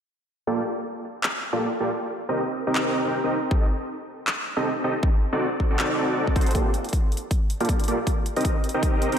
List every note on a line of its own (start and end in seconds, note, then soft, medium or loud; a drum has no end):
0.47 0.62 A#3 medium
0.47 0.62 F4 medium
0.47 0.62 G4 medium
0.47 0.62 A4 medium
0.47 0.62 D5 medium
1.23 clap medium
1.53 1.67 A#3 medium
1.53 1.67 F4 medium
1.53 1.67 G4 medium
1.53 1.67 A4 medium
1.53 1.67 D5 medium
1.80 1.90 A#3 medium
1.80 1.90 F4 medium
1.80 1.90 G4 medium
1.80 1.90 A4 medium
1.80 1.90 D5 loud
2.29 2.43 C4 medium
2.29 2.43 D#4 medium
2.29 2.43 G4 medium
2.29 2.43 A#4 medium
2.29 2.43 D#5 medium
2.67 3.02 C4 medium
2.67 3.02 D#4 medium
2.67 3.02 G4 medium
2.67 3.02 A#4 medium
2.67 3.02 D#5 medium
2.75 clap medium
3.05 3.19 C4 medium
3.05 3.19 D#4 medium
3.05 3.19 G4 medium
3.05 3.19 A#4 medium
3.05 3.19 G5 loud
3.24 3.38 C4 medium
3.24 3.38 D#4 medium
3.24 3.38 G4 medium
3.24 3.38 A#4 medium
3.24 3.38 D#5 loud
3.51 3.66 C4 medium
3.51 3.66 D#4 medium
3.51 3.66 G4 medium
3.51 3.66 A4 medium
3.51 3.66 D#5 medium
3.51 kick loud
4.27 clap medium
4.57 4.71 C4 medium
4.57 4.71 D#4 medium
4.57 4.71 G4 medium
4.57 4.71 A4 medium
4.57 4.71 D#5 medium
4.84 4.94 C4 medium
4.84 4.94 D#4 medium
4.84 4.94 G4 medium
4.84 4.94 A4 medium
4.84 4.94 D#5 loud
5.03 kick loud
5.33 5.47 C4 medium
5.33 5.47 D#4 medium
5.33 5.47 F#4 medium
5.33 5.47 A4 medium
5.33 5.47 D5 medium
5.60 kick medium
5.70 5.96 C4 medium
5.70 5.96 D#4 medium
5.70 5.96 F#4 medium
5.70 5.96 A4 medium
5.70 5.96 D5 loud
5.79 clap medium
5.98 6.34 C4 medium
5.98 6.34 D#4 medium
5.98 6.34 F#4 medium
5.98 6.34 A4 medium
5.98 6.34 D5 medium
6.27 kick medium
6.36 6.53 C4 medium
6.36 6.53 D#4 medium
6.36 6.53 F#4 medium
6.36 6.53 A4 medium
6.36 6.53 C5 loud
6.36 kick loud
6.36 closed hi-hat medium
6.41 closed hi-hat medium
6.46 closed hi-hat medium
6.51 closed hi-hat medium
6.55 6.68 G1 medium
6.55 6.70 A#3 medium
6.55 6.70 F4 medium
6.55 6.70 G4 medium
6.55 6.70 A4 medium
6.55 6.70 D5 medium
6.55 kick medium
6.55 closed hi-hat medium
6.74 closed hi-hat medium
6.84 closed hi-hat soft
6.89 closed hi-hat medium
6.93 kick medium
6.93 closed hi-hat medium
7.12 closed hi-hat soft
7.17 closed hi-hat medium
7.31 kick medium
7.31 closed hi-hat medium
7.50 closed hi-hat medium
7.60 7.86 G2 loud
7.60 7.74 A#3 medium
7.60 7.74 F4 medium
7.60 7.74 G4 medium
7.60 7.74 A4 medium
7.60 7.74 D5 medium
7.60 closed hi-hat soft
7.65 closed hi-hat medium
7.69 kick medium
7.69 closed hi-hat medium
7.80 closed hi-hat soft
7.84 closed hi-hat medium
7.88 7.96 G1 medium
7.88 7.98 A#3 medium
7.88 7.98 F4 medium
7.88 7.98 G4 medium
7.88 7.98 A4 medium
7.88 7.98 D5 loud
7.88 closed hi-hat medium
8.07 kick medium
8.07 closed hi-hat medium
8.26 closed hi-hat medium
8.36 8.48 C2 medium
8.36 8.50 C4 medium
8.36 8.50 D#4 medium
8.36 8.50 G4 medium
8.36 8.50 A#4 medium
8.36 8.50 D#5 medium
8.36 closed hi-hat soft
8.41 closed hi-hat medium
8.45 kick medium
8.45 closed hi-hat medium
8.64 closed hi-hat soft
8.69 closed hi-hat medium
8.74 9.10 C2 medium
8.74 9.10 C4 medium
8.74 9.10 D#4 medium
8.74 9.10 G4 medium
8.74 9.10 A#4 medium
8.74 9.10 D#5 medium
8.83 kick medium
8.83 closed hi-hat medium
9.02 closed hi-hat medium
9.12 9.19 C2 loud
9.12 9.19 C4 loud
9.12 9.19 D#4 medium
9.12 9.19 G4 medium
9.12 9.19 A#4 medium
9.12 9.19 G5 loud
9.12 closed hi-hat soft